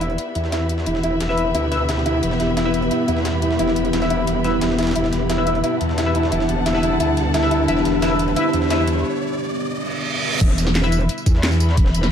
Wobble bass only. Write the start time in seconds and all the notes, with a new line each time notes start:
Already playing: E1
0.35 E2
0.86 E1
1.03 E1
1.20 E1
1.55 D2
2.23 E1
2.40 E1
3.08 E2
3.59 E1
3.76 E1
3.93 E1
4.27 E1
4.61 E1
4.95 E1
5.13 E1
5.81 E2
6.32 E1
6.49 E1
6.66 E1
7.00 D2
7.68 E1
7.85 E1
8.53 E2
10.41 E1
10.58 E1
11.26 E2
11.77 E1
11.94 E1